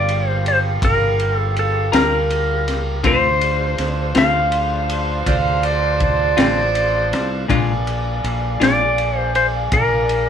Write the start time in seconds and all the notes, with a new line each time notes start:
Already playing: G1 G3 A#3 F4 D5 F5 G5
0.09 ride
0.29 C5
0.46 C5, ride
0.82 G1 A#4, kick, ride
1.20 ride
1.37 A4
1.57 A4, ride
1.92 D2 G3 D4 F4 A#4, snare, ride
2.30 ride
2.68 C#2, snare, ride
3.03 D2 D3 F3 A3 C4 D4 F4 C5 D5 F5 C6, kick, ride
3.41 ride
3.78 D2, snare, ride
4.15 D2 D3 A3 C4 F4 F5, snare, ride
4.52 ride
4.90 ride
5.27 D2 C5 D5 F5, kick, ride
5.63 D5, ride
6.00 D5, kick, ride
6.37 A1 D3 A3 C4 F4, snare, ride
6.75 ride
7.13 C2, snare, ride
7.48 A#1 A#2 G#3 A#3 D4 F4 D5 G#5, kick, ride
7.87 ride
8.24 A#1, ride
8.60 A#1 A#2 G#3 D4 F4 D5, snare, ride
8.98 ride
9.18 C5
9.35 C5, ride
9.72 A#1 A#4, kick, ride
10.09 ride